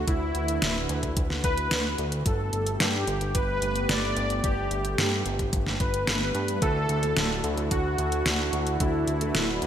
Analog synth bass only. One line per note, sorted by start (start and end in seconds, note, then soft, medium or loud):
0.08 0.32 D2 loud
0.35 0.60 D2 medium
0.62 0.87 D1 loud
0.89 1.02 D2 loud
1.03 1.15 D2 medium
1.17 1.41 D2 medium
1.44 1.69 D2 medium
1.71 1.96 D2 medium
1.99 2.23 D2 loud
2.26 2.50 G1 loud
2.53 2.78 G1 medium
2.80 3.05 G2 loud
3.07 3.20 G1 loud
3.21 3.33 G1 medium
3.35 3.60 G1 medium
3.62 3.87 G1 medium
3.89 4.14 G1 medium
4.16 4.41 G1 medium
4.44 4.69 G1 loud
4.71 4.96 G1 medium
4.98 5.23 G2 loud
5.26 5.38 G1 loud
5.39 5.52 G1 medium
5.53 5.78 G1 medium
5.80 6.05 G1 medium
6.07 6.32 G1 loud
6.35 6.59 G2 loud
6.62 6.87 D2 loud
6.89 7.14 D2 medium
7.17 7.41 D1 loud
7.44 7.56 D2 loud
7.57 7.70 D2 medium
7.71 7.96 D2 medium
7.98 8.23 D2 medium
8.26 8.50 D2 medium
8.53 8.78 D2 medium
8.80 9.05 D2 loud
9.07 9.32 D2 medium
9.35 9.60 D1 loud
9.62 9.67 D2 loud